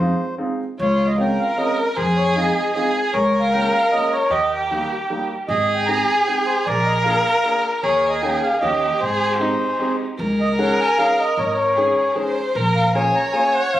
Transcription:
Already playing: F2 C5
0.00 G#3 C4 D#4 F4
0.38 G#3 C4 D#4 F4
0.79 C#2 F4 C#5
1.07 D#5
1.17 G#3 C4 C#4 F4 A#4 G5
1.39 F5
1.51 F5
1.58 G#3 C4 C#4 F4 D#5
1.77 A#4
1.96 F2 G#4 C5
2.16 C#5
2.35 G#3 C4 D#4 F4 D#5
2.74 G#3 C4 D#4 F4 G#4
3.13 C#2 A#4 C#5
3.40 F5
3.52 G#3 A#3 C#4 F4 G5
3.73 F5
3.92 G#3 A#3 C#4 F4 D#5
4.12 C#5
4.30 D#2 G4 D#5
4.52 G5
4.70 G3 A#3 D#4 G4 G5
5.10 G3 A#3 D#4 G4
5.48 G#1 G#4 D#5
5.74 G5
5.86 G#3 C4 D#4 G4 A#5
6.07 G#5
6.26 G#3 C4 D#4 G4 G5
6.46 C5
6.66 A#1 A#4 D5
6.85 D#5
7.04 A#3 D4 F4 G#4 F5
7.45 A#3 D4 F4 G#4
7.83 D#2 G#4 C#5
8.09 D#5
8.22 A#3 C#4 D#4 G#4 G5
8.43 F5
8.60 D#2 A#3 C#4 D#4 G4 D#5
9.00 G#1 G#4 C5
9.40 G#3 C4 D#4 G4
9.79 G#3 C4 D#4 G4
10.18 C#2 A#4
10.41 D#5
10.59 G#3 C#4 D#4 G#4 F#5
10.80 G#5
10.98 G#3 C#4 D#4 G#4 F5
11.19 D#5
11.37 G#1 C#5
11.46 D#5
11.54 C#5
11.76 G#3 C#4 D#4 G#4
12.15 G#3 C#4 D#4 G#4 C5
12.55 A#1 A#4
12.75 F5
12.95 A#3 C#4 F4 G#4 C#5 G#5
13.15 A#5
13.32 A#3 C#4 F4 G#4 G#5
13.54 F#5
13.73 F2 F5

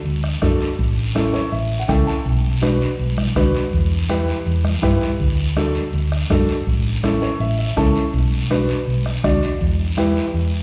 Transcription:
0.05 D2, long guiro
0.24 bombo rim
0.41 F#2 D4 F#4 A4, bombo low, bombo rim, high conga, short guiro
0.61 short guiro
0.79 A1, bombo low, long guiro
1.15 C#4 E4 A4, bombo rim, high conga, short guiro
1.34 C#5, short guiro
1.52 A1 E5, long guiro
1.79 F#5
1.88 C#2 C#4 E4 A4 G5, bombo low, bombo rim, high conga, short guiro
2.07 A5, short guiro
2.26 B1, bombo low, long guiro
2.62 D4 F#4 B4, bombo rim, high conga, short guiro
2.81 short guiro
2.99 B1, long guiro
3.18 bombo rim, high conga
3.36 D2 D4 F#4 B4, bombo low, bombo rim, high conga, short guiro
3.55 short guiro
3.73 E2, bombo low, long guiro
4.09 E4 G4 B4, bombo rim, high conga, short guiro
4.28 short guiro
4.46 E2, long guiro
4.64 bombo rim, high conga
4.82 G2 E4 G4 B4, bombo low, bombo rim, high conga, short guiro
5.01 short guiro
5.20 D2, bombo low, long guiro
5.56 D4 F#4 A4, bombo rim, high conga, short guiro
5.75 short guiro
5.93 D2, long guiro
6.12 bombo rim
6.30 F#2 D4 F#4 A4, bombo low, bombo rim, high conga, short guiro
6.48 short guiro
6.67 A1, bombo low, long guiro
7.03 C#4 E4 A4, bombo rim, high conga, short guiro
7.22 C#5, short guiro
7.40 A1 E5, long guiro
7.59 E5
7.77 C#2 C#4 E4 A4 A5, bombo low, bombo rim, high conga, short guiro
7.96 short guiro
8.13 B1, bombo low, long guiro
8.50 D4 F#4 B4, bombo rim, high conga, short guiro
8.69 short guiro
8.87 B1, long guiro
9.06 bombo rim
9.23 D2 D4 F#4 D5, bombo low, bombo rim, high conga, short guiro
9.43 short guiro
9.61 E2, bombo low, long guiro
9.97 E4 G4 B4, bombo rim, high conga, short guiro
10.16 short guiro
10.34 E2, long guiro

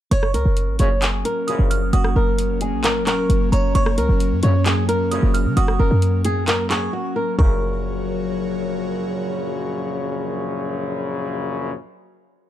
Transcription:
0.11 F#1 F#3 A#3 C#4 C#5 C#6, closed hi-hat
0.23 cross-stick
0.34 C#2 A#4, closed hi-hat
0.45 F#1
0.57 closed hi-hat
0.68 G#1
0.79 F#1 A#1 F#2 C#3 C#5, closed hi-hat
1.02 G#4, clap, closed hi-hat
1.25 A#4, closed hi-hat
1.48 A#1 F#2 C#3 D#6, closed hi-hat
1.59 F#1
1.71 F6, closed hi-hat
1.93 F#1 F#4 D#6, closed hi-hat
2.05 cross-stick
2.16 F#1 A#4
2.39 closed hi-hat
2.61 G#4, closed hi-hat
2.73 A#1
2.84 A#4, clap, closed hi-hat
3.01 F#1
3.07 A#4 C#6, clap, closed hi-hat
3.30 F#1, closed hi-hat
3.52 F#1 C#5 A#5, closed hi-hat
3.75 F#1 C#5 C#6, closed hi-hat
3.86 cross-stick
3.98 C#2 A#4, closed hi-hat
4.09 F#1
4.20 closed hi-hat
4.32 F#2
4.43 A#1 F#2 C#3 C#5, closed hi-hat
4.66 G#4, clap, closed hi-hat
4.89 A#4, closed hi-hat
5.11 A#1 F#2 C#3 D#6, closed hi-hat
5.23 F#1
5.34 F6, closed hi-hat
5.45 C#3
5.57 F#1 F#4 D#6, closed hi-hat
5.68 cross-stick
5.79 F#1 A#4
5.91 F#2
6.02 closed hi-hat
6.25 G#4, closed hi-hat
6.48 A#4, clap, closed hi-hat
6.70 G#4 C#6, clap, closed hi-hat
6.93 F#4
7.16 A#4
7.39 F#1 A#1 F#2 C#3 F#3 F#4 A#4 C#5 C#6, kick

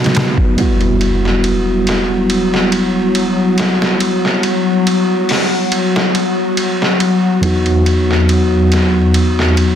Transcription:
Already playing: F#3 B3 D#4 F#4 B4
0.04 snare, ride
0.15 snare, ride
0.37 kick
0.56 F#3 G3 B3 E4 F#4, ride, impact
0.61 F#4
0.81 ride
1.01 ride
1.25 snare
1.44 ride
1.87 snare, ride
2.30 ride
2.54 snare
2.72 ride
3.15 ride
3.58 snare, ride
3.82 snare
4.00 ride
4.25 snare
4.43 ride
4.87 ride
5.29 snare, open hi-hat
5.72 ride
5.96 snare
6.15 ride
6.57 ride
6.82 snare
7.00 ride
7.41 E2 F#3 B3 D#4, ride
7.46 F#4
7.66 ride
7.86 ride
8.11 snare
8.29 ride
8.72 snare, ride
9.14 ride
9.39 snare
9.57 ride

